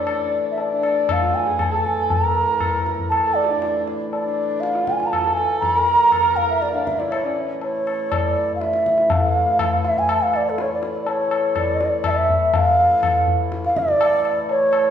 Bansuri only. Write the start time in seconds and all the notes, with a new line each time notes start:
Already playing: D5
0.51 E5
0.61 D5
1.12 F5
1.35 G#5
1.61 G#5 A5
1.71 A5
1.86 G#5
2.12 A#5
3.10 A5
3.34 D5
4.12 D5
4.61 F5
4.85 G#5
5.06 A5 A#5
5.34 G#5
5.60 A#5
6.36 F5
6.50 E5
6.62 D5
6.74 F5
6.87 E5
6.99 D5
7.12 C#5
7.25 D5
7.62 C#5
8.11 D5
8.56 F5
8.61 E5
9.11 F5
9.85 E5
9.99 G#5
10.10 A5
10.22 F5
10.36 D5
10.50 A4
10.61 C#5
10.74 D5
11.03 D5
11.08 C#5
11.57 D5
12.06 E5
12.10 D5
12.17 E5
12.55 F5
13.66 F5
13.79 D5
14.50 C#5